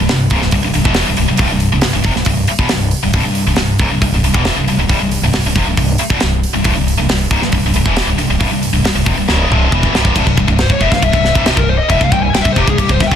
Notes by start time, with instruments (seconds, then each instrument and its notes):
0.01 upright bass C1
0.09 upright bass C1, distorted electric guitar C2 G2, snare, open hi-hat
0.30 upright bass C#1, distorted electric guitar C#2 G#2, kick, open hi-hat
0.42 upright bass C1, distorted electric guitar C2 G2, snare
0.51 upright bass C1, distorted electric guitar C2 G2, kick, open hi-hat
0.64 upright bass C1, distorted electric guitar C2 G2
0.74 upright bass C1, distorted electric guitar C2 G2, open hi-hat
0.85 upright bass E1, distorted electric guitar E2 B2 E3, kick
0.94 snare, open hi-hat
1.08 upright bass C1, distorted electric guitar C2 G2
1.17 upright bass C1, distorted electric guitar C2 G2, open hi-hat
1.28 upright bass C1, distorted electric guitar C2 G2
1.37 upright bass C1, distorted electric guitar C2 G2, kick, open hi-hat
1.51 upright bass C1, distorted electric guitar C2 G2
1.60 open hi-hat
1.72 upright bass C1, distorted electric guitar C2 G2
1.82 upright bass C1, distorted electric guitar C2 G2, snare, open hi-hat
1.93 upright bass C1, distorted electric guitar C2 G2
2.04 upright bass F1, distorted electric guitar F2 C3, kick, open hi-hat
2.15 upright bass C1, distorted electric guitar C2 G2, snare
2.25 upright bass C1, distorted electric guitar C2 G2, kick, open hi-hat
2.47 muted distorted electric guitar stroke, muted upright bass stroke, open hi-hat
2.59 upright bass E1, distorted electric guitar E2 B2, kick
2.69 upright bass C1, distorted electric guitar C2 G2, snare, open hi-hat
2.91 open hi-hat
3.03 upright bass C1, distorted electric guitar C2 G2
3.13 upright bass C1, distorted electric guitar C2 G2, kick, open hi-hat
3.25 upright bass C1, distorted electric guitar C2 G2
3.35 open hi-hat
3.47 upright bass C1, distorted electric guitar C2 G2
3.56 upright bass C1, distorted electric guitar C2 G2, snare, open hi-hat
3.79 upright bass C#1, distorted electric guitar C#2 G#2, kick
3.90 upright bass C1, distorted electric guitar C2 G2
4.02 upright bass C1, distorted electric guitar C2 G2, kick, open hi-hat
4.12 upright bass C1, distorted electric guitar C2 G2
4.23 upright bass C1, distorted electric guitar C2 G2, open hi-hat
4.34 upright bass E1, distorted electric guitar E2 B2 E3, kick
4.45 snare, open hi-hat
4.56 upright bass C1, distorted electric guitar C2 G2
4.67 upright bass C1, distorted electric guitar C2 G2, open hi-hat
4.77 upright bass C1, distorted electric guitar C2 G2
4.89 upright bass C1, distorted electric guitar C2 G2, kick, open hi-hat
4.99 upright bass C1, distorted electric guitar C2 G2
5.11 open hi-hat
5.22 upright bass C1, distorted electric guitar C2 G2
5.33 upright bass C1, distorted electric guitar C2 G2, snare, open hi-hat
5.45 upright bass C1, distorted electric guitar C2 G2
5.56 upright bass F1, distorted electric guitar F2 C3, kick, open hi-hat
5.67 upright bass C1, distorted electric guitar C2 G2
5.77 upright bass C1, distorted electric guitar C2 G2, kick, open hi-hat
5.98 muted distorted electric guitar stroke, muted upright bass stroke, open hi-hat
6.10 upright bass E1, distorted electric guitar E2 B2, kick
6.20 upright bass C1, distorted electric guitar C2 G2, snare, open hi-hat
6.43 open hi-hat
6.54 upright bass C1, distorted electric guitar C2 G2
6.64 upright bass C1, distorted electric guitar C2 G2, kick, open hi-hat
6.75 upright bass C1, distorted electric guitar C2 G2
6.88 open hi-hat
6.98 upright bass C1, distorted electric guitar C2 G2
7.09 upright bass C1, distorted electric guitar C2 G2, snare, open hi-hat
7.31 upright bass C#1, distorted electric guitar C#2 G#2, kick, open hi-hat
7.42 upright bass C1, distorted electric guitar C2 G2, snare
7.52 upright bass C1, distorted electric guitar C2 G2, kick, open hi-hat
7.65 upright bass C1, distorted electric guitar C2 G2
7.74 upright bass C1, distorted electric guitar C2 G2, open hi-hat
7.86 upright bass E1, distorted electric guitar E2 B2 E3, kick
7.96 snare, open hi-hat
8.06 upright bass C1, distorted electric guitar C2 G2
8.18 upright bass C1, distorted electric guitar C2 G2, open hi-hat
8.30 upright bass C1, distorted electric guitar C2 G2
8.40 upright bass C1, distorted electric guitar C2 G2, kick, open hi-hat
8.50 upright bass C1, distorted electric guitar C2 G2
8.63 open hi-hat
8.73 upright bass C1, distorted electric guitar C2 G2
8.84 upright bass C1, distorted electric guitar C2 G2, snare, open hi-hat
8.95 upright bass C1, distorted electric guitar C2 G2
9.06 upright bass F1, distorted electric guitar F2 C3, kick
9.17 upright bass C1, distorted electric guitar C2 G2
9.28 upright bass C#1, distorted electric guitar C#2 G#2 C#3, snare
9.50 upright bass C1, distorted electric guitar C2 G2 C3, mid tom
9.72 upright bass E1, distorted electric guitar E2 B2 E3, kick
9.83 kick
9.93 upright bass C1, distorted electric guitar C2 G2 C3, snare
10.05 kick
10.15 upright bass C1, distorted electric guitar C2 G2, kick, crash
10.27 upright bass C1, distorted electric guitar C2 G2, kick
10.37 upright bass C1, distorted electric guitar C2 G2, kick
10.47 upright bass C1, distorted electric guitar C2 G2, kick
10.59 lead electric guitar C5, snare, crash
10.70 upright bass C1, distorted electric guitar C2 G2, lead electric guitar C#5, kick
10.81 upright bass E1, distorted electric guitar E2 B2, lead electric guitar E5, kick
10.91 upright bass C1, distorted electric guitar C2 G2, lead electric guitar F5, kick, snare
11.02 upright bass C1, distorted electric guitar C2 G2, lead electric guitar E5, kick, crash
11.13 upright bass C1, distorted electric guitar C2 G2, kick
11.25 snare
11.35 upright bass C1, distorted electric guitar C2 G2 C3, kick
11.46 snare, crash
11.56 upright bass C1, distorted electric guitar C2 G2, lead electric guitar A#4, kick
11.69 lead electric guitar C5
11.78 lead electric guitar D#5
11.89 upright bass E1, distorted electric guitar E2 B2, lead electric guitar E5, kick, crash
12.01 upright bass C1, distorted electric guitar C2 G2, lead electric guitar F5, kick
12.12 upright bass C1, distorted electric guitar C2 G2, lead electric guitar G5, kick
12.23 lead electric guitar G#5
12.34 upright bass C1, distorted electric guitar C2 G2, lead electric guitar G5, snare, crash
12.41 distorted electric guitar C2, lead electric guitar E5, kick
12.46 upright bass C1, distorted electric guitar G2
12.52 lead electric guitar C5, kick
12.56 upright bass F1, distorted electric guitar F2 C3, lead electric guitar G4
12.68 upright bass C1, distorted electric guitar C2 G2, lead electric guitar G#4, kick
12.78 upright bass C1, distorted electric guitar C2 G2, lead electric guitar G4, kick, crash
12.89 upright bass C1, distorted electric guitar C2 G2, lead electric guitar C5, kick
13.00 upright bass C1, distorted electric guitar C2 G2, lead electric guitar E5, kick, snare
13.08 distorted electric guitar C#2, lead electric guitar G5, kick
13.12 upright bass C#1, distorted electric guitar G#2